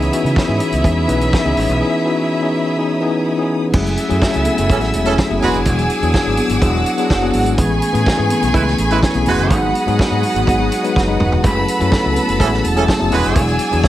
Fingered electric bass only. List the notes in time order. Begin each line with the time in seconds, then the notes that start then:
0.24 C#3
0.48 G#2
0.73 C#2
0.84 E2
1.09 B1
1.45 C#2
1.57 A1
1.69 B1
3.74 F#1
4.10 F#2
4.35 C#2
4.59 F#1
4.70 A1
4.95 E1
5.30 F#1
5.43 E1
5.55 F#1
5.66 E1
6.02 E2
6.27 G#1
6.50 G#1
6.62 E1
7.11 F#1
7.34 G#1
7.58 A1
7.94 A2
8.19 G#2
8.43 B1
8.54 C#2
8.79 A1
9.15 B1
9.27 E1
9.38 F#1
9.51 G#1
9.87 G#2
10.11 G#2
10.35 G#1
10.48 G#1
10.97 F#1
11.21 E1
11.44 F#1
11.81 F#2
12.05 C#2
12.29 F#1
12.40 A1
12.65 E1
13.01 F#1
13.13 E1
13.26 F#1
13.36 E1
13.73 E2